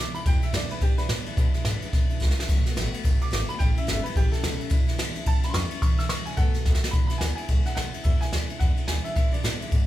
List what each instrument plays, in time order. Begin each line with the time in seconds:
Already playing: upright bass D2
0.00 steel-string acoustic guitar E2 B2 E3 G#3 D4 E4, upright piano D6
0.14 steel-string acoustic guitar E3 G#3 D4 E4, upright piano B5, ride
0.26 upright bass E2, steel-string acoustic guitar E2 B2 E3 G#3 D4 E4, upright piano G5, kick, ride
0.42 steel-string acoustic guitar E3 G#3 D4 E4, upright piano E5, muted upright bass stroke, ride
0.53 steel-string acoustic guitar E2 B2 E3 G#3 D4 E4, upright bass F#2, upright piano D5, snare, ride
0.69 steel-string acoustic guitar E3 G#3 D4 E4, upright piano B4, muted upright bass stroke, ride
0.81 upright bass G#2, steel-string acoustic guitar E3 G#3 D4 E4, upright piano G4, kick, snare, ride
0.98 steel-string acoustic guitar E3 G#3 D4 E4, upright piano D4 B4, snare, ride
1.09 steel-string acoustic guitar E2 B2 E3 G#3 D4 E4, upright bass A2, snare, ride
1.26 steel-string acoustic guitar E3 G#3 D4 E4, muted upright bass stroke, ride
1.37 steel-string acoustic guitar E2 B2 E3 G#3 D4 E4, upright bass B2, kick, ride
1.54 steel-string acoustic guitar G#3 D4 E4, muted upright bass stroke, snare, ride
1.58 steel-string acoustic guitar E3
1.65 steel-string acoustic guitar E2 B2 E3 G#3 D4 E4, upright bass G#2, snare, ride
1.81 steel-string acoustic guitar G#3 D4 E4, muted upright bass stroke, ride
1.86 steel-string acoustic guitar E3
1.93 upright bass E2, steel-string acoustic guitar E3 G#3 D4 E4, kick, snare, ride
2.10 steel-string acoustic guitar E3 G#3 D4 E4, muted upright bass stroke, ride
2.20 upright bass C#2, steel-string acoustic guitar E2 B2 E3 G#3 D4 E4, kick, snare
2.31 snare
2.37 steel-string acoustic guitar E3 G#3 D4 E4, muted upright bass stroke, snare
2.48 upright bass B1, steel-string acoustic guitar B2 D#3 A3 B3 F#4, kick, ride, crash
2.66 steel-string acoustic guitar A3 B3 F#4, muted upright bass stroke, snare, ride
2.76 upright bass A1, steel-string acoustic guitar B2 D#3 A3 B3 F#4, snare, ride
2.92 steel-string acoustic guitar A3 B3 F#4, muted upright bass stroke, ride
3.04 upright bass F#1, steel-string acoustic guitar D#3 A3 B3 F#4, kick, snare, ride
3.20 steel-string acoustic guitar A3 B3 F#4, upright piano D6, ride
3.31 upright bass G#1, steel-string acoustic guitar B2 D#3 A3 B3 F#4, upright piano D6, snare, ride
3.48 steel-string acoustic guitar A3 B3 F#4, upright piano B5, muted upright bass stroke, ride
3.59 upright bass A1, steel-string acoustic guitar A2 E3 G3 C#4 E4, upright piano G5, kick, ride
3.76 steel-string acoustic guitar G3 C#4 E4, upright piano E5, muted upright bass stroke, ride
3.87 upright bass G1, steel-string acoustic guitar A2 E3 G3 C#4 E4, upright piano E5, snare, ride
4.03 steel-string acoustic guitar G3 C#4 E4, upright piano B4, muted upright bass stroke, ride
4.15 upright bass A1, steel-string acoustic guitar E3 G3 C#4 E4, upright piano G4, kick, ride
4.32 steel-string acoustic guitar G3 C#4 E4, upright piano A4, muted upright bass stroke, snare, ride
4.43 upright bass C#2, steel-string acoustic guitar A2 E3 G3 C#4 E4, snare, ride
4.59 steel-string acoustic guitar G3 C#4 E4, muted upright bass stroke, ride
4.70 steel-string acoustic guitar E2 B2 E3 G#3 D4 E4, upright bass E2, kick, ride
4.87 steel-string acoustic guitar E3 G#3 D4 E4, snare, ride
4.98 steel-string acoustic guitar E2 B2 E3 G#3 D4 E4, upright bass G#2, snare, ride
5.15 steel-string acoustic guitar E3 G#3 D4 E4, muted upright bass stroke, ride
5.26 upright bass A2, steel-string acoustic guitar E3 G3 C#4 E4, upright piano A5, kick, ride
5.43 steel-string acoustic guitar G3 C#4 E4, upright piano B5, muted upright bass stroke, snare, ride
5.50 upright piano C6
5.54 upright bass F2, steel-string acoustic guitar A2 E3 G3 C#4 E4, upright piano C#6, snare, ride
5.70 steel-string acoustic guitar G3 C#4 E4, muted upright bass stroke, ride
5.82 steel-string acoustic guitar E2 B2 E3 G#3 D4 E4, upright bass E2, upright piano C#6, kick, ride
5.98 steel-string acoustic guitar E3 G#3 D4 E4, upright piano E6, snare, ride
6.09 steel-string acoustic guitar E2 B2 E3 G#3 D4 E4, upright bass G#2, upright piano C#6, snare, ride
6.26 steel-string acoustic guitar G#3 D4 E4, upright piano G#5, muted upright bass stroke, ride
6.30 steel-string acoustic guitar E3
6.37 upright bass F#2, steel-string acoustic guitar D#3 A3 B3 F#4, upright piano A4 F#5, kick, ride
6.54 steel-string acoustic guitar B3 F#4, muted upright bass stroke, snare, ride
6.58 steel-string acoustic guitar A3
6.65 upright bass D#2, steel-string acoustic guitar B2 D#3 A3 B3 F#4, kick, snare
6.75 snare
6.82 steel-string acoustic guitar A3 B3 F#4, snare
6.91 steel-string acoustic guitar E2 B2 E3 G#3, upright piano B5, kick, ride
6.95 steel-string acoustic guitar D4 E4
7.07 steel-string acoustic guitar E4, upright piano B5, snare, ride
7.11 steel-string acoustic guitar E3 G#3 D4
7.18 upright bass D2, steel-string acoustic guitar E2 B2 E3, upright piano G#5, snare, ride
7.22 steel-string acoustic guitar G#3 D4 E4
7.35 steel-string acoustic guitar D4 E4, upright piano G#5, muted upright bass stroke, ride
7.40 steel-string acoustic guitar E3 G#3
7.48 upright bass C#2, steel-string acoustic guitar E3 G#3 D4 E4, kick, ride
7.65 steel-string acoustic guitar E3 G#3 D4 E4, upright piano F#5, muted upright bass stroke, snare, ride
7.75 upright bass B1, steel-string acoustic guitar E2 B2 E3 G#3 D4 E4, upright piano F#5, snare, ride
7.93 steel-string acoustic guitar E3 G#3 D4 E4, muted upright bass stroke, ride
8.04 steel-string acoustic guitar E2 B2 E3 G#3 D4 E4, upright bass E2, upright piano E5, kick, ride
8.21 steel-string acoustic guitar G#3 D4 E4, upright piano G#5, snare, ride
8.25 steel-string acoustic guitar E3
8.32 upright bass D2, steel-string acoustic guitar E2 B2 E3 G#3 D4 E4, snare, ride
8.49 steel-string acoustic guitar E3 G#3 D4 E4, muted upright bass stroke, ride
8.59 upright bass E2, steel-string acoustic guitar E3 G#3 D4, upright piano F#5, kick, snare, ride
8.63 steel-string acoustic guitar E4
8.76 steel-string acoustic guitar E3 G#3 D4 E4, ride
8.88 upright bass D2, steel-string acoustic guitar E2 B2 E3 G#3 D4 E4, upright piano G#5, snare, ride
9.04 steel-string acoustic guitar E3 G#3 D4 E4, upright piano E5, ride
9.15 steel-string acoustic guitar E2 B2 E3 G#3 D4 E4, upright piano E5, kick, ride
9.32 steel-string acoustic guitar E3 G#3 D4 E4, upright piano D5, ride
9.43 steel-string acoustic guitar E2 B2 E3 G#3 D4 E4, upright bass A2, snare, ride
9.60 steel-string acoustic guitar E3 G#3 D4 E4, muted upright bass stroke, ride
9.71 upright bass G#2, steel-string acoustic guitar E3 G#3 D4 E4, kick, ride